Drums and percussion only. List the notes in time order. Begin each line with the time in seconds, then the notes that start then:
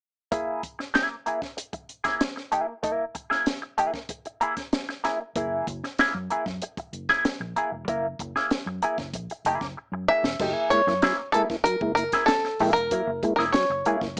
0.32 kick, closed hi-hat
0.63 kick, closed hi-hat
0.80 snare
0.95 snare, closed hi-hat
1.26 closed hi-hat
1.42 kick, snare
1.58 closed hi-hat
1.73 kick, closed hi-hat
1.89 closed hi-hat
2.04 kick, snare, closed hi-hat
2.21 snare, closed hi-hat
2.37 snare
2.52 closed hi-hat
2.83 kick, closed hi-hat
3.15 kick, closed hi-hat
3.31 snare
3.46 snare, closed hi-hat
3.78 closed hi-hat
3.94 kick, snare
4.09 kick, closed hi-hat
4.25 closed hi-hat
4.41 closed hi-hat
4.57 kick, snare, closed hi-hat
4.73 snare, closed hi-hat
4.89 snare
5.05 snare, closed hi-hat
5.36 kick, closed hi-hat
5.67 kick, closed hi-hat
5.84 snare
5.99 snare, closed hi-hat
6.30 closed hi-hat
6.46 kick, snare
6.62 closed hi-hat
6.77 kick, closed hi-hat
6.93 closed hi-hat
7.09 kick, snare
7.25 snare, closed hi-hat
7.56 closed hi-hat
7.88 kick, closed hi-hat
8.19 kick, closed hi-hat
8.36 snare
8.51 snare, closed hi-hat
8.82 closed hi-hat
8.98 kick, snare
9.13 kick, closed hi-hat
9.30 closed hi-hat
9.45 closed hi-hat
9.61 kick, snare
10.24 snare
10.39 kick, crash
10.71 kick, closed hi-hat
10.87 snare
11.02 snare, closed hi-hat
11.34 closed hi-hat
11.50 kick, snare
11.65 closed hi-hat
11.81 kick
11.97 closed hi-hat
12.12 kick, snare, closed hi-hat
12.28 snare, closed hi-hat
12.44 snare
12.59 open hi-hat
12.76 closed hi-hat
12.91 kick, closed hi-hat
13.23 kick, closed hi-hat
13.39 snare
13.54 snare, closed hi-hat
13.85 closed hi-hat
14.01 kick, snare